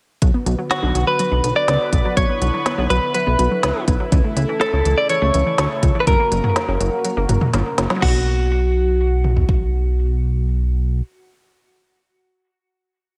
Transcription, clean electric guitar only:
0, 0, Header, 1, 2, 480
1, 0, Start_track
1, 0, Key_signature, 2, "minor"
1, 0, Tempo, 487805
1, 215, Time_signature, 4, 2, 24, 8
1, 12959, End_track
2, 0, Start_track
2, 0, Title_t, "Clean electric guitar"
2, 0, Program_c, 0, 27
2, 696, Note_on_c, 0, 66, 91
2, 1052, Note_off_c, 0, 66, 0
2, 1056, Note_on_c, 0, 71, 98
2, 1531, Note_off_c, 0, 71, 0
2, 1535, Note_on_c, 0, 74, 100
2, 2131, Note_off_c, 0, 74, 0
2, 2135, Note_on_c, 0, 73, 101
2, 2816, Note_off_c, 0, 73, 0
2, 2855, Note_on_c, 0, 71, 90
2, 3083, Note_off_c, 0, 71, 0
2, 3094, Note_on_c, 0, 71, 82
2, 3775, Note_off_c, 0, 71, 0
2, 4536, Note_on_c, 0, 69, 93
2, 4896, Note_on_c, 0, 74, 99
2, 4906, Note_off_c, 0, 69, 0
2, 5007, Note_off_c, 0, 74, 0
2, 5015, Note_on_c, 0, 73, 104
2, 5903, Note_off_c, 0, 73, 0
2, 5907, Note_on_c, 0, 71, 65
2, 5973, Note_off_c, 0, 71, 0
2, 5977, Note_on_c, 0, 70, 82
2, 7377, Note_off_c, 0, 70, 0
2, 7894, Note_on_c, 0, 66, 81
2, 10838, Note_off_c, 0, 66, 0
2, 12959, End_track
0, 0, End_of_file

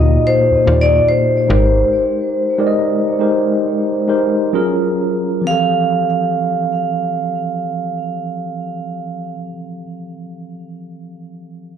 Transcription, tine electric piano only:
0, 0, Header, 1, 2, 480
1, 0, Start_track
1, 0, Tempo, 832178
1, 1096, Time_signature, 4, 2, 24, 8
1, 1586, Tempo, 884956
1, 2546, Tempo, 938967
1, 6256, End_track
2, 0, Start_track
2, 0, Title_t, "Tine electric piano"
2, 0, Program_c, 0, 4
2, 0, Control_c, 0, 64, 127
2, 0, Note_on_c, 0, 46, 76
2, 0, Note_on_c, 0, 58, 68
2, 0, Note_on_c, 0, 63, 69
2, 0, Note_on_c, 0, 65, 67
2, 0, Note_on_c, 0, 66, 56
2, 0, Note_on_c, 0, 67, 64
2, 0, Note_on_c, 0, 74, 106
2, 0, Note_on_c, 0, 75, 91
2, 356, Note_off_c, 0, 46, 0
2, 357, Note_off_c, 0, 58, 0
2, 358, Note_off_c, 0, 63, 0
2, 360, Note_off_c, 0, 65, 0
2, 362, Note_off_c, 0, 67, 0
2, 362, Note_off_c, 0, 75, 0
2, 376, Note_on_c, 0, 46, 72
2, 379, Note_on_c, 0, 58, 67
2, 380, Note_on_c, 0, 63, 63
2, 383, Note_on_c, 0, 65, 73
2, 386, Note_on_c, 0, 67, 68
2, 391, Note_off_c, 0, 74, 0
2, 391, Note_on_c, 0, 74, 77
2, 848, Note_off_c, 0, 63, 0
2, 851, Note_on_c, 0, 56, 74
2, 853, Note_off_c, 0, 67, 0
2, 854, Note_off_c, 0, 46, 0
2, 855, Note_off_c, 0, 58, 0
2, 855, Note_on_c, 0, 63, 75
2, 857, Note_off_c, 0, 65, 0
2, 860, Note_on_c, 0, 67, 82
2, 861, Note_off_c, 0, 74, 0
2, 861, Note_on_c, 0, 70, 83
2, 862, Control_c, 0, 64, 0
2, 865, Note_on_c, 0, 72, 94
2, 866, Note_off_c, 0, 66, 0
2, 973, Control_c, 0, 64, 127
2, 1441, Note_off_c, 0, 56, 0
2, 1443, Note_off_c, 0, 63, 0
2, 1446, Note_off_c, 0, 67, 0
2, 1446, Note_off_c, 0, 70, 0
2, 1448, Note_off_c, 0, 72, 0
2, 1489, Note_on_c, 0, 56, 101
2, 1492, Note_on_c, 0, 63, 77
2, 1494, Note_on_c, 0, 67, 82
2, 1497, Note_on_c, 0, 70, 85
2, 1501, Note_on_c, 0, 74, 81
2, 1527, Note_off_c, 0, 74, 0
2, 1538, Note_on_c, 0, 75, 102
2, 1805, Note_off_c, 0, 56, 0
2, 1806, Note_off_c, 0, 63, 0
2, 1807, Note_off_c, 0, 67, 0
2, 1808, Note_off_c, 0, 70, 0
2, 1825, Note_on_c, 0, 56, 84
2, 1828, Note_off_c, 0, 75, 0
2, 1828, Note_on_c, 0, 63, 82
2, 1833, Note_on_c, 0, 67, 78
2, 1834, Note_on_c, 0, 70, 77
2, 1838, Note_on_c, 0, 72, 83
2, 2279, Note_off_c, 0, 56, 0
2, 2281, Note_off_c, 0, 63, 0
2, 2283, Note_off_c, 0, 67, 0
2, 2284, Note_off_c, 0, 70, 0
2, 2286, Note_off_c, 0, 72, 0
2, 2304, Note_on_c, 0, 56, 83
2, 2307, Note_on_c, 0, 63, 77
2, 2312, Note_on_c, 0, 67, 77
2, 2314, Note_on_c, 0, 70, 83
2, 2317, Note_on_c, 0, 72, 101
2, 2548, Note_off_c, 0, 56, 0
2, 2549, Note_off_c, 0, 63, 0
2, 2550, Note_on_c, 0, 54, 101
2, 2551, Note_off_c, 0, 67, 0
2, 2553, Note_off_c, 0, 70, 0
2, 2553, Control_c, 0, 64, 0
2, 2554, Note_off_c, 0, 72, 0
2, 2554, Note_on_c, 0, 61, 89
2, 2556, Note_on_c, 0, 65, 92
2, 2560, Note_on_c, 0, 68, 90
2, 2563, Note_on_c, 0, 70, 115
2, 2642, Control_c, 0, 64, 127
2, 2998, Note_off_c, 0, 54, 0
2, 3000, Note_off_c, 0, 61, 0
2, 3001, Note_off_c, 0, 65, 0
2, 3003, Note_off_c, 0, 68, 0
2, 3003, Note_on_c, 0, 53, 81
2, 3005, Note_off_c, 0, 70, 0
2, 3016, Note_on_c, 0, 60, 74
2, 3027, Control_c, 0, 64, 0
2, 3028, Note_on_c, 0, 52, 67
2, 3041, Note_on_c, 0, 67, 72
2, 3052, Note_on_c, 0, 69, 89
2, 3118, Control_c, 0, 64, 127
2, 5007, Note_off_c, 0, 53, 0
2, 5019, Note_off_c, 0, 60, 0
2, 5031, Note_off_c, 0, 52, 0
2, 5044, Note_off_c, 0, 67, 0
2, 5056, Note_off_c, 0, 69, 0
2, 6229, Control_c, 0, 64, 0
2, 6256, End_track
0, 0, End_of_file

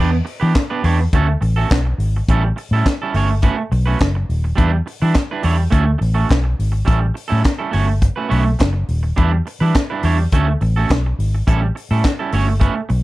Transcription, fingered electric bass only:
0, 0, Header, 1, 2, 480
1, 0, Start_track
1, 0, Tempo, 574713
1, 1902, Time_signature, 4, 2, 24, 8
1, 10884, End_track
2, 0, Start_track
2, 0, Title_t, "Fingered electric bass"
2, 0, Program_c, 0, 33
2, 0, Note_on_c, 0, 40, 85
2, 168, Note_off_c, 0, 40, 0
2, 355, Note_on_c, 0, 52, 94
2, 440, Note_off_c, 0, 52, 0
2, 701, Note_on_c, 0, 40, 76
2, 887, Note_off_c, 0, 40, 0
2, 943, Note_on_c, 0, 38, 98
2, 1128, Note_off_c, 0, 38, 0
2, 1183, Note_on_c, 0, 33, 84
2, 1368, Note_off_c, 0, 33, 0
2, 1428, Note_on_c, 0, 35, 86
2, 1611, Note_off_c, 0, 35, 0
2, 1656, Note_on_c, 0, 32, 70
2, 1844, Note_off_c, 0, 32, 0
2, 1908, Note_on_c, 0, 33, 103
2, 2092, Note_off_c, 0, 33, 0
2, 2264, Note_on_c, 0, 45, 87
2, 2354, Note_off_c, 0, 45, 0
2, 2625, Note_on_c, 0, 31, 84
2, 2909, Note_off_c, 0, 31, 0
2, 3104, Note_on_c, 0, 35, 96
2, 3290, Note_off_c, 0, 35, 0
2, 3350, Note_on_c, 0, 30, 80
2, 3534, Note_off_c, 0, 30, 0
2, 3586, Note_on_c, 0, 27, 76
2, 3771, Note_off_c, 0, 27, 0
2, 3824, Note_on_c, 0, 40, 82
2, 4010, Note_off_c, 0, 40, 0
2, 4194, Note_on_c, 0, 52, 92
2, 4281, Note_off_c, 0, 52, 0
2, 4544, Note_on_c, 0, 40, 69
2, 4731, Note_off_c, 0, 40, 0
2, 4777, Note_on_c, 0, 38, 98
2, 4967, Note_off_c, 0, 38, 0
2, 5021, Note_on_c, 0, 33, 90
2, 5209, Note_off_c, 0, 33, 0
2, 5267, Note_on_c, 0, 35, 91
2, 5453, Note_off_c, 0, 35, 0
2, 5506, Note_on_c, 0, 32, 78
2, 5692, Note_off_c, 0, 32, 0
2, 5743, Note_on_c, 0, 33, 104
2, 5931, Note_off_c, 0, 33, 0
2, 6113, Note_on_c, 0, 45, 81
2, 6201, Note_off_c, 0, 45, 0
2, 6465, Note_on_c, 0, 31, 85
2, 6751, Note_off_c, 0, 31, 0
2, 6945, Note_on_c, 0, 35, 95
2, 7132, Note_off_c, 0, 35, 0
2, 7182, Note_on_c, 0, 30, 86
2, 7370, Note_off_c, 0, 30, 0
2, 7423, Note_on_c, 0, 27, 72
2, 7611, Note_off_c, 0, 27, 0
2, 7663, Note_on_c, 0, 40, 87
2, 7851, Note_off_c, 0, 40, 0
2, 8026, Note_on_c, 0, 52, 88
2, 8117, Note_off_c, 0, 52, 0
2, 8382, Note_on_c, 0, 40, 71
2, 8570, Note_off_c, 0, 40, 0
2, 8622, Note_on_c, 0, 38, 99
2, 8810, Note_off_c, 0, 38, 0
2, 8866, Note_on_c, 0, 33, 93
2, 9052, Note_off_c, 0, 33, 0
2, 9105, Note_on_c, 0, 35, 94
2, 9292, Note_off_c, 0, 35, 0
2, 9343, Note_on_c, 0, 32, 76
2, 9531, Note_off_c, 0, 32, 0
2, 9584, Note_on_c, 0, 33, 95
2, 9771, Note_off_c, 0, 33, 0
2, 9945, Note_on_c, 0, 45, 89
2, 10036, Note_off_c, 0, 45, 0
2, 10298, Note_on_c, 0, 31, 88
2, 10585, Note_off_c, 0, 31, 0
2, 10775, Note_on_c, 0, 35, 90
2, 10884, Note_off_c, 0, 35, 0
2, 10884, End_track
0, 0, End_of_file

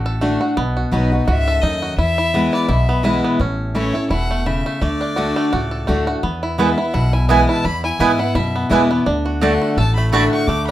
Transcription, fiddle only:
0, 0, Header, 1, 2, 480
1, 0, Start_track
1, 0, Tempo, 353982
1, 774, Time_signature, 4, 2, 24, 8
1, 14524, End_track
2, 0, Start_track
2, 0, Title_t, "Fiddle"
2, 0, Program_c, 0, 110
2, 1273, Note_on_c, 0, 71, 79
2, 1710, Note_off_c, 0, 71, 0
2, 1726, Note_on_c, 0, 76, 115
2, 2189, Note_on_c, 0, 75, 106
2, 2209, Note_off_c, 0, 76, 0
2, 2674, Note_off_c, 0, 75, 0
2, 2682, Note_on_c, 0, 76, 127
2, 3380, Note_off_c, 0, 76, 0
2, 3439, Note_on_c, 0, 74, 96
2, 3643, Note_on_c, 0, 76, 97
2, 3664, Note_off_c, 0, 74, 0
2, 4393, Note_off_c, 0, 76, 0
2, 5092, Note_on_c, 0, 73, 89
2, 5539, Note_off_c, 0, 73, 0
2, 5565, Note_on_c, 0, 78, 100
2, 6049, Note_on_c, 0, 76, 92
2, 6069, Note_off_c, 0, 78, 0
2, 6535, Note_on_c, 0, 74, 103
2, 6555, Note_off_c, 0, 76, 0
2, 7973, Note_off_c, 0, 74, 0
2, 8934, Note_on_c, 0, 76, 80
2, 9409, Note_on_c, 0, 78, 99
2, 9429, Note_off_c, 0, 76, 0
2, 9673, Note_on_c, 0, 80, 84
2, 9693, Note_off_c, 0, 78, 0
2, 9890, Note_off_c, 0, 80, 0
2, 9897, Note_on_c, 0, 80, 94
2, 10140, Note_off_c, 0, 80, 0
2, 10159, Note_on_c, 0, 81, 104
2, 10371, Note_on_c, 0, 83, 118
2, 10392, Note_off_c, 0, 81, 0
2, 10631, Note_off_c, 0, 83, 0
2, 10639, Note_on_c, 0, 80, 96
2, 11111, Note_on_c, 0, 78, 99
2, 11131, Note_off_c, 0, 80, 0
2, 11325, Note_on_c, 0, 76, 91
2, 11345, Note_off_c, 0, 78, 0
2, 11804, Note_off_c, 0, 76, 0
2, 11812, Note_on_c, 0, 74, 77
2, 12158, Note_off_c, 0, 74, 0
2, 12768, Note_on_c, 0, 78, 78
2, 13215, Note_off_c, 0, 78, 0
2, 13248, Note_on_c, 0, 81, 107
2, 13492, Note_off_c, 0, 81, 0
2, 13500, Note_on_c, 0, 83, 86
2, 13702, Note_off_c, 0, 83, 0
2, 13710, Note_on_c, 0, 83, 106
2, 13966, Note_off_c, 0, 83, 0
2, 13993, Note_on_c, 0, 85, 109
2, 14196, Note_on_c, 0, 86, 124
2, 14217, Note_off_c, 0, 85, 0
2, 14460, Note_off_c, 0, 86, 0
2, 14469, Note_on_c, 0, 83, 102
2, 14524, Note_off_c, 0, 83, 0
2, 14524, End_track
0, 0, End_of_file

